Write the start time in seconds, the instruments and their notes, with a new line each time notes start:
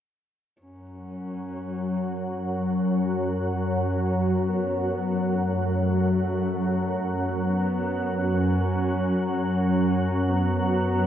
0.58 synth drone F#2 F#3, horsehead fiddle C#4
2.54 horsehead fiddle C#4
3.50 horsehead fiddle C#4
4.48 horsehead fiddle B3
5.46 horsehead fiddle A3
7.40 horsehead fiddle B3
8.35 horsehead fiddle C#4
9.31 horsehead fiddle C#4
10.29 horsehead fiddle B3